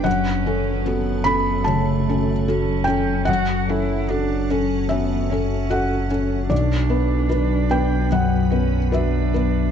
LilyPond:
<<
  \new Staff \with { instrumentName = "Felt piano" } { \time 4/4 \key fis \phrygian \tempo 4 = 74 << { fis''4. b''8 a''4. g''8 | fis''2 e''4 fis''8 r8 | d''4. g''8 fis''4 e''4 | } \\ { fis,8 <cis' a'>8 <fis' a'>8 <cis' a'>8 cis8 <cis' a'>8 <fis' a'>8 <cis' a'>8 | fis,8 <cis' a'>8 <fis' a'>8 <cis' a'>8 cis'8 <cis' a'>8 <fis' a'>8 <cis' a'>8 | b,,8 <b b'>8 <fis' b'>8 <b b'>8 fis,8 <b b'>8 <fis' b'>8 <b b'>8 | } >> }
  \new Staff \with { instrumentName = "Ambient pad" } { \time 4/4 \key fis \phrygian <fis cis' a'>1 | <fis' a' cis''>1 | <fis b b'>1 | }
  \new Staff \with { instrumentName = "Cello" } { \time 4/4 \key fis \phrygian cis'4 b4 a4 cis'4 | fis'8 e'8 d'8 cis'8 b8 cis'4. | d'2 b8 cis'8 d'4 | }
  \new Staff \with { instrumentName = "Sub bass" } { \clef bass \time 4/4 \key fis \phrygian fis,,1 | fis,,1 | b,,1 | }
>>